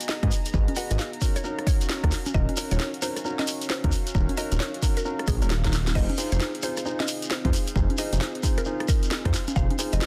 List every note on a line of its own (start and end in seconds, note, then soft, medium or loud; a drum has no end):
0.00 1.18 B3 medium
0.00 1.18 D#4 medium
0.00 0.20 F#4 medium
0.00 0.20 G#4 medium
0.00 1.19 G#4 medium
0.00 0.20 B4 medium
0.00 0.20 D#5 medium
0.00 5.91 A#5 medium
0.00 closed hi-hat medium
0.00 shekere medium
0.09 0.28 D#5 medium
0.09 snare loud
0.09 shekere soft
0.23 0.30 G#2 medium
0.23 0.32 F#4 loud
0.23 0.32 G#4 medium
0.23 0.32 B4 medium
0.23 0.32 D#5 loud
0.23 kick loud
0.23 closed hi-hat medium
0.23 high conga medium
0.31 open hi-hat loud
0.31 shekere medium
0.45 closed hi-hat medium
0.45 shekere soft
0.53 0.66 G#1 loud
0.53 0.68 F#4 medium
0.53 0.68 G#4 medium
0.53 0.68 B4 medium
0.53 0.68 D#5 medium
0.53 kick loud
0.53 shekere soft
0.68 closed hi-hat medium
0.68 high conga medium
0.76 0.89 F#4 medium
0.76 0.89 G#4 medium
0.76 0.89 B4 medium
0.76 0.89 D#5 loud
0.76 0.91 F#5 medium
0.76 open hi-hat loud
0.76 shekere medium
0.90 0.98 G#1 medium
0.90 1.08 F#4 medium
0.90 1.08 G#4 medium
0.90 1.08 B4 medium
0.90 1.08 D#5 loud
0.90 closed hi-hat medium
0.90 shekere soft
0.98 1.18 F5 loud
0.98 snare loud
0.98 shekere soft
1.13 closed hi-hat soft
1.21 1.36 C#4 medium
1.21 5.91 C#4 medium
1.21 1.36 D#4 medium
1.21 1.36 F#4 medium
1.21 5.91 F#4 medium
1.21 1.36 A#4 medium
1.21 10.06 F5 medium
1.21 kick medium
1.21 open hi-hat loud
1.21 shekere medium
1.36 1.52 C#5 medium
1.36 cross-stick medium
1.36 closed hi-hat medium
1.36 shekere medium
1.44 2.00 C#4 medium
1.44 2.00 D#4 medium
1.44 2.00 F#4 medium
1.44 2.00 A#4 medium
1.44 shekere soft
1.59 cross-stick medium
1.59 closed hi-hat soft
1.67 1.86 C#5 medium
1.67 kick loud
1.67 open hi-hat loud
1.67 shekere medium
1.81 closed hi-hat medium
1.81 shekere medium
1.89 snare loud
1.89 shekere soft
2.03 2.10 D#2 medium
2.03 2.12 C#4 loud
2.03 2.12 D#4 medium
2.03 2.12 F#4 medium
2.03 2.12 A#4 loud
2.03 kick medium
2.03 cross-stick medium
2.03 closed hi-hat medium
2.11 snare medium
2.11 open hi-hat loud
2.11 shekere medium
2.26 closed hi-hat medium
2.26 high conga medium
2.26 shekere medium
2.34 2.46 D#1 loud
2.34 2.49 C#4 medium
2.34 2.49 D#4 medium
2.34 2.49 F#4 medium
2.34 2.49 A#4 medium
2.34 2.53 D#5 loud
2.34 kick loud
2.34 shekere soft
2.49 closed hi-hat medium
2.49 high conga medium
2.57 2.69 C#4 loud
2.57 2.69 D#4 medium
2.57 2.69 F#4 medium
2.57 2.69 A#4 loud
2.57 open hi-hat loud
2.57 shekere loud
2.71 2.78 D#1 medium
2.71 2.88 C#4 medium
2.71 2.88 D#4 medium
2.71 2.88 F#4 medium
2.71 2.88 A#4 loud
2.71 2.88 C#5 medium
2.71 closed hi-hat medium
2.71 shekere medium
2.79 snare loud
2.79 shekere soft
2.94 closed hi-hat soft
3.02 3.17 C#4 medium
3.02 3.16 D#4 medium
3.02 3.17 F#4 medium
3.02 3.17 A#4 medium
3.02 3.21 C5 medium
3.02 open hi-hat loud
3.02 shekere medium
3.16 cross-stick medium
3.16 closed hi-hat medium
3.16 shekere soft
3.25 3.81 C#4 medium
3.25 3.81 D#4 medium
3.25 3.81 F#4 medium
3.25 3.81 A#4 medium
3.25 shekere soft
3.39 3.55 D#5 medium
3.39 snare medium
3.39 closed hi-hat soft
3.39 high conga medium
3.47 open hi-hat loud
3.47 shekere medium
3.61 closed hi-hat medium
3.61 shekere soft
3.70 3.89 C5 medium
3.70 snare loud
3.70 shekere soft
3.84 3.91 D#2 medium
3.84 3.93 C#4 loud
3.84 3.93 D#4 medium
3.84 3.93 F#4 medium
3.84 3.93 A#4 loud
3.84 kick loud
3.84 closed hi-hat medium
3.84 high conga medium
3.92 open hi-hat loud
3.92 shekere medium
4.07 closed hi-hat medium
4.07 shekere soft
4.15 4.27 D#1 loud
4.15 4.29 C#4 medium
4.15 4.29 D#4 medium
4.15 4.29 F#4 medium
4.15 4.29 A#4 medium
4.15 kick loud
4.15 shekere soft
4.29 closed hi-hat medium
4.29 high conga medium
4.37 4.50 C#4 medium
4.37 4.50 D#4 medium
4.37 4.50 F#4 medium
4.37 4.50 A#4 loud
4.37 4.52 D#5 medium
4.37 open hi-hat loud
4.37 shekere medium
4.52 4.59 D#1 medium
4.52 4.69 C#4 medium
4.52 4.69 D#4 medium
4.52 4.69 F#4 medium
4.52 4.69 A#4 loud
4.52 closed hi-hat medium
4.52 shekere soft
4.60 4.79 C#5 loud
4.60 snare loud
4.60 shekere soft
4.74 closed hi-hat soft
4.83 4.97 C#4 medium
4.83 4.97 D#4 medium
4.83 4.97 F#4 medium
4.83 4.97 A#4 medium
4.83 kick medium
4.83 open hi-hat loud
4.83 shekere medium
4.97 5.13 A#4 medium
4.97 closed hi-hat medium
4.97 shekere medium
5.05 5.39 C#4 medium
5.05 5.39 D#4 medium
5.05 5.39 F#4 medium
5.05 5.39 A#4 medium
5.05 shekere soft
5.19 cross-stick medium
5.19 closed hi-hat soft
5.27 5.43 A#1 medium
5.27 5.47 G#4 loud
5.27 kick loud
5.27 open hi-hat loud
5.27 shekere loud
5.42 5.93 D#1 loud
5.42 5.50 C#4 loud
5.42 5.50 D#4 medium
5.42 5.50 F#4 medium
5.42 5.50 A#4 loud
5.42 closed hi-hat medium
5.42 shekere soft
5.50 snare loud
5.50 shekere soft
5.64 5.73 C#4 medium
5.64 5.73 D#4 medium
5.64 5.73 F#4 medium
5.64 5.73 A#4 medium
5.64 kick medium
5.64 snare medium
5.64 closed hi-hat medium
5.73 snare medium
5.73 open hi-hat loud
5.73 shekere medium
5.87 snare medium
5.87 closed hi-hat medium
5.87 high conga medium
5.87 shekere medium
5.95 6.07 F1 loud
5.95 10.06 C4 medium
5.95 6.10 D#4 medium
5.95 10.06 D#4 medium
5.95 6.10 F4 medium
5.95 6.10 G#4 medium
5.95 10.06 G#4 medium
5.95 6.10 C5 medium
5.95 6.14 D#5 loud
5.95 kick loud
5.95 crash medium
5.95 shekere soft
6.10 closed hi-hat medium
6.10 high conga medium
6.18 6.30 D#4 medium
6.18 6.30 F4 medium
6.18 6.30 G#4 medium
6.18 6.30 C5 loud
6.18 open hi-hat loud
6.18 shekere loud
6.32 6.39 F1 medium
6.32 6.49 D#4 medium
6.32 6.49 F4 medium
6.32 6.49 G#4 medium
6.32 6.48 C5 medium
6.32 6.49 C5 loud
6.32 closed hi-hat medium
6.32 shekere medium
6.40 snare loud
6.40 shekere soft
6.55 closed hi-hat soft
6.62 6.77 D#4 medium
6.62 6.77 F4 medium
6.62 6.77 G#4 medium
6.62 6.77 C5 medium
6.62 6.82 C5 loud
6.62 open hi-hat loud
6.62 shekere loud
6.77 cross-stick medium
6.77 closed hi-hat medium
6.77 shekere medium
6.85 7.41 D#4 medium
6.85 7.41 F4 medium
6.85 7.41 G#4 medium
6.85 7.41 C5 loud
6.85 shekere soft
7.00 7.16 D#5 medium
7.00 snare medium
7.00 closed hi-hat soft
7.00 high conga medium
7.08 open hi-hat loud
7.08 shekere medium
7.22 closed hi-hat medium
7.22 shekere medium
7.30 7.50 C5 loud
7.30 snare loud
7.30 shekere soft
7.45 7.52 F2 medium
7.45 7.53 D#4 loud
7.45 7.53 F4 medium
7.45 7.53 G#4 medium
7.45 7.53 C5 loud
7.45 kick loud
7.45 closed hi-hat medium
7.45 high conga medium
7.53 open hi-hat loud
7.53 shekere loud
7.67 closed hi-hat medium
7.67 shekere medium
7.76 7.88 F1 loud
7.76 7.90 D#4 medium
7.76 7.90 F4 medium
7.76 7.90 G#4 medium
7.76 7.90 C5 medium
7.76 kick loud
7.76 shekere soft
7.90 closed hi-hat medium
7.90 high conga medium
7.98 8.10 D#4 medium
7.98 8.10 F4 medium
7.98 8.10 G#4 medium
7.98 8.10 C5 loud
7.98 8.13 D#5 medium
7.98 open hi-hat loud
7.98 shekere loud
8.12 8.19 F1 medium
8.12 8.30 D#4 medium
8.12 8.30 F4 medium
8.12 8.30 G#4 medium
8.12 8.30 C5 loud
8.12 closed hi-hat medium
8.12 shekere medium
8.21 8.40 C5 loud
8.21 snare loud
8.21 shekere soft
8.35 closed hi-hat soft
8.43 8.58 D#4 medium
8.43 8.58 F4 medium
8.43 8.58 G#4 medium
8.43 8.58 C5 medium
8.43 kick medium
8.43 open hi-hat loud
8.43 shekere medium
8.58 8.74 A#4 medium
8.58 cross-stick medium
8.58 closed hi-hat medium
8.58 shekere medium
8.65 9.22 D#4 medium
8.65 9.22 F4 medium
8.65 9.22 G#4 medium
8.65 9.22 C5 medium
8.65 shekere soft
8.80 cross-stick medium
8.80 closed hi-hat soft
8.88 9.07 A#4 loud
8.88 kick loud
8.88 open hi-hat loud
8.88 shekere medium
9.03 closed hi-hat medium
9.03 shekere medium
9.11 snare loud
9.11 shekere soft
9.25 9.32 F2 medium
9.25 9.34 D#4 loud
9.25 9.34 F4 medium
9.25 9.34 G#4 medium
9.25 9.34 C5 loud
9.25 kick medium
9.25 cross-stick medium
9.25 closed hi-hat medium
9.34 snare medium
9.34 open hi-hat loud
9.34 shekere loud
9.48 closed hi-hat medium
9.48 high conga medium
9.48 shekere medium
9.56 9.68 F1 loud
9.56 9.71 D#4 medium
9.56 9.71 F4 medium
9.56 9.71 G#4 medium
9.56 9.71 C5 medium
9.56 9.75 F5 loud
9.56 kick loud
9.56 shekere soft
9.70 closed hi-hat medium
9.70 high conga medium
9.79 9.91 D#4 medium
9.79 9.91 F4 medium
9.79 9.91 G#4 medium
9.79 9.91 C5 loud
9.79 open hi-hat loud
9.79 shekere loud
9.92 10.00 F1 medium
9.92 10.06 D#4 medium
9.92 10.06 F4 medium
9.92 10.06 G#4 medium
9.92 10.06 C5 loud
9.92 10.06 D#5 loud
9.92 closed hi-hat medium
9.92 shekere medium
10.00 snare loud
10.00 shekere soft